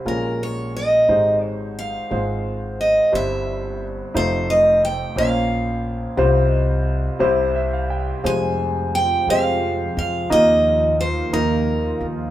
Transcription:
0.05 1.04 A#1 soft
0.05 0.95 A#1 medium
0.05 1.05 A#2 medium
0.05 0.83 G#3 medium
0.05 0.83 C#4 medium
0.05 0.83 F4 medium
0.05 0.83 A#4 medium
0.05 0.42 A#4 medium
0.43 0.76 C#5 medium
0.77 1.45 D#5 medium
1.08 2.07 G#1 medium
1.08 1.97 G#1 medium
1.08 2.07 G#2 medium
1.08 1.85 G#3 medium
1.08 1.85 D#4 medium
1.08 1.85 G4 soft
1.08 1.85 C5 medium
1.45 1.74 C#5 medium
1.79 2.80 F5 medium
2.11 2.99 G#1 medium
2.11 3.09 G#1 soft
2.11 3.09 G#2 medium
2.11 2.87 G#3 medium
2.11 2.87 C4 medium
2.11 2.88 F4 medium
2.11 2.88 C5 medium
2.81 3.15 D#5 medium
3.12 4.10 G1 medium
3.12 4.01 G1 medium
3.12 4.10 G2 medium
3.12 3.88 G3 medium
3.12 3.89 C4 medium
3.12 3.89 E4 medium
3.12 3.89 C5 medium
3.12 3.86 E5 medium
4.14 5.12 F1 medium
4.14 5.03 F1 medium
4.14 5.12 F2 medium
4.14 4.90 A3 medium
4.14 4.90 D#4 medium
4.14 4.91 F4 medium
4.14 4.91 C5 medium
4.14 4.50 C5 medium
4.50 4.84 D#5 medium
4.85 5.18 G5 medium
5.16 6.04 A#1 medium
5.16 6.14 A#1 medium
5.16 6.14 A#2 medium
5.16 5.92 A#3 medium
5.16 5.92 C#4 medium
5.16 5.92 F4 medium
5.16 5.93 C5 medium
5.16 6.47 F5 loud
6.17 7.07 C2 loud
6.17 7.17 C2 medium
6.17 7.17 C3 medium
6.17 6.95 G3 medium
6.17 6.95 C4 medium
6.17 6.95 F4 medium
6.17 6.95 C5 medium
6.47 7.18 D#5 loud
7.19 8.20 C2 medium
7.19 8.10 C2 medium
7.19 8.20 C3 medium
7.19 7.97 G3 medium
7.19 7.98 C4 medium
7.19 7.98 E4 medium
7.19 7.98 C5 medium
7.56 7.72 E5 medium
7.73 7.89 F5 medium
7.90 8.22 G5 medium
8.24 10.26 F1 medium
8.24 10.26 F2 medium
8.24 9.14 F2 medium
8.24 12.30 F3 medium
8.24 9.02 G3 medium
8.24 9.01 G#3 medium
8.24 10.28 C4 medium
8.24 9.01 F4 medium
8.24 10.28 F4 medium
8.24 9.02 C5 medium
8.24 8.95 G#5 medium
8.95 9.30 G5 medium
9.28 9.87 F2 medium
9.28 10.05 G#3 medium
9.28 10.05 F4 medium
9.28 10.05 G4 medium
9.28 10.06 C5 medium
9.28 9.97 F5 loud
9.97 10.26 F2 medium
9.97 10.32 F5 medium
10.30 12.30 D#2 medium
10.30 11.19 D#2 medium
10.30 12.30 D#3 medium
10.30 11.06 A#3 medium
10.30 12.30 A#3 medium
10.30 11.07 D#4 medium
10.30 12.30 F4 medium
10.30 11.07 F4 medium
10.30 11.07 D#5 medium
10.30 10.96 D#5 medium
11.01 11.33 C5 medium
11.32 11.91 D#2 medium
11.32 12.09 A#3 medium
11.32 12.09 D#4 medium
11.32 12.10 F4 medium
11.32 12.06 A#4 medium
11.32 12.09 D#5 medium
12.01 12.30 D#2 medium

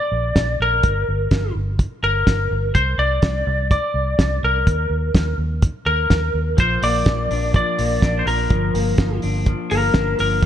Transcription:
0.00 0.57 D5 medium
0.12 0.31 A#1 medium
0.35 0.55 A#1 medium
0.35 kick medium
0.35 snare loud
0.35 closed hi-hat medium
0.60 0.79 A#1 medium
0.60 1.53 A#4 medium
0.83 1.03 G1 medium
0.83 kick medium
0.83 closed hi-hat medium
1.08 1.28 G1 medium
1.31 1.51 G1 medium
1.31 kick loud
1.31 snare loud
1.31 closed hi-hat medium
1.55 1.85 G1 medium
1.79 kick loud
1.79 closed hi-hat medium
2.03 2.23 G1 medium
2.03 2.74 A#4 medium
2.27 2.47 G1 medium
2.27 kick loud
2.27 snare medium
2.27 closed hi-hat medium
2.51 2.71 G1 medium
2.75 2.95 C2 medium
2.75 2.97 C5 medium
2.75 kick medium
2.75 closed hi-hat medium
2.98 3.18 C2 medium
2.98 3.67 D5 medium
3.22 3.43 C2 medium
3.22 kick loud
3.22 snare loud
3.22 closed hi-hat medium
3.47 3.77 C2 medium
3.71 4.39 D5 medium
3.71 kick loud
3.71 closed hi-hat medium
3.94 4.14 C2 medium
4.18 4.38 C2 medium
4.18 kick loud
4.18 snare loud
4.18 closed hi-hat medium
4.43 4.63 C2 medium
4.43 5.36 A#4 medium
4.67 4.87 D#2 loud
4.67 kick loud
4.67 closed hi-hat medium
4.90 5.10 D#2 medium
5.14 5.34 D#2 medium
5.14 kick loud
5.14 snare loud
5.14 closed hi-hat medium
5.38 5.68 D#2 medium
5.62 kick loud
5.62 closed hi-hat medium
5.86 6.06 D#2 medium
5.86 6.59 A#4 medium
6.10 6.30 D#2 medium
6.10 kick loud
6.10 snare medium
6.10 closed hi-hat medium
6.34 6.54 D#2 medium
6.57 6.78 A#1 loud
6.57 7.05 F3 medium
6.57 6.84 C5 medium
6.57 kick medium
6.57 closed hi-hat medium
6.82 7.02 A#1 medium
6.82 7.78 A#3 soft
6.82 7.51 D5 loud
6.82 open hi-hat medium
7.05 7.26 A#1 medium
7.05 7.54 F3 soft
7.05 kick loud
7.05 snare loud
7.05 closed hi-hat medium
7.31 7.60 A#1 medium
7.31 8.01 D4 medium
7.31 open hi-hat medium
7.54 8.26 F3 medium
7.54 8.22 D5 medium
7.54 kick loud
7.54 closed hi-hat medium
7.78 7.99 A#1 medium
7.78 8.55 A#3 medium
7.78 open hi-hat medium
8.02 8.22 A#1 loud
8.02 9.23 D4 medium
8.02 kick medium
8.02 snare medium
8.02 closed hi-hat medium
8.19 8.26 C5 soft
8.26 8.46 A#1 medium
8.26 8.50 F3 soft
8.26 9.19 A#4 medium
8.26 open hi-hat medium
8.50 8.70 G1 medium
8.50 8.98 F3 medium
8.50 kick loud
8.50 closed hi-hat medium
8.74 8.94 G1 medium
8.74 9.69 A#3 medium
8.74 open hi-hat medium
8.98 9.46 F3 soft
8.98 kick loud
8.98 snare loud
8.98 closed hi-hat medium
9.22 9.53 G1 medium
9.22 9.94 D4 medium
9.22 open hi-hat medium
9.46 10.17 F3 medium
9.46 kick loud
9.46 closed hi-hat medium
9.70 9.91 G1 medium
9.70 10.46 A#3 medium
9.70 10.19 A#4 medium
9.70 open hi-hat medium
9.94 10.14 G1 medium
9.94 10.46 D4 medium
9.94 kick loud
9.94 snare loud
9.94 closed hi-hat medium
10.18 10.39 G1 medium
10.18 10.42 F3 medium
10.18 10.44 A#4 medium
10.18 open hi-hat medium
10.42 10.46 C2 loud
10.42 10.46 G3 medium
10.42 kick loud
10.42 closed hi-hat medium

